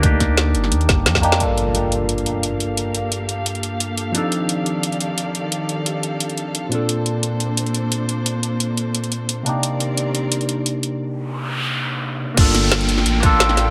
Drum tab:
CC |----------------|----------------|----------------|----------------|
HH |x-x-x-x-xxx-x-xx|x-x-x-x-xxx-x-x-|x-x-x-x-xxx-x-x-|x-x-x-x-xxx-x-x-|
SD |--o-o--o--o-oo-o|----------------|----------------|----------------|
BD |o-o-------o--o--|----------------|----------------|----------------|

CC |----------------|----------------|----------------|----------------|
HH |x-x-x-x-xxx-x-x-|x-x-x-x-xxx-x-x-|x-x-x-x-xxx-x-x-|x-x-x-x-xxx-x-x-|
SD |----------------|----------------|----------------|----------------|
BD |----------------|----------------|----------------|----------------|

CC |----------------|x---------------|
HH |----------------|x-x-xxx-x-x-x-x-|
SD |----------------|--o-o--o----ooo-|
BD |----------------|o---------o-----|